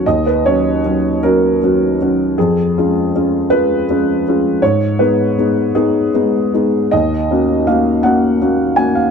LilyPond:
\new Staff \with { instrumentName = "Felt piano" } { \time 6/8 \key ees \minor \tempo 4. = 53 << { ees''16 ces''16 des''4 bes'4. | aes'4. ces''4. | des''8 ces''4 aes'4. | ees''4 f''8 ges''4 aes''16 f''16 | } \\ { ees,8 <ges des' ges'>8 <ges des' ges'>8 <ges des' ges'>8 <ges des' ges'>8 <ges des' ges'>8 | f,8 <aes des' f'>8 <aes des' f'>8 <aes des' f'>8 <aes des' f'>8 <aes des' f'>8 | aes,8 <aes ces' ees'>8 <aes ces' ees'>8 <aes ces' ees'>8 <aes ces' ees'>8 <aes ces' ees'>8 | ees,8 <bes des' ges'>8 <bes des' ges'>8 <bes des' ges'>8 <bes des' ges'>8 <bes des' ges'>8 | } >> }